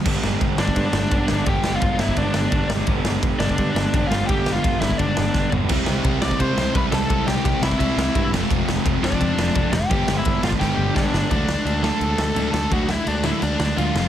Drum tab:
CC |x---------------|----------------|----------------|----------------|
RD |----x---x---x---|x---x---x---x---|x---x---x---x---|x---x---x-------|
SD |--o---o---o---o-|--o---o---o---o-|--o---o---o---o-|--o---o---o-o---|
FT |----------------|----------------|----------------|--------------o-|
BD |o---o--oo---o---|o---o--oo---o---|o---o--oo---o---|o---o--oo---o---|

CC |x---------------|----------------|----------------|----------------|
RD |x---x---x---x---|x---x---x---x---|x---x---x---x---|x---x-----------|
SD |--o---o---o---o-|--o---o---o---o-|--o---o---o---o-|--o---o-o---o-o-|
FT |----------------|----------------|----------------|----------------|
BD |o---o--oo---o---|o---o--oo---o---|o---o--oo---o---|o---o--oo---o---|

CC |x---x---x---x---|x---x---x---x---|
RD |----------------|----------------|
SD |--o---o---o---o-|--o---o---o---o-|
FT |----------------|----------------|
BD |o---------------|o---------------|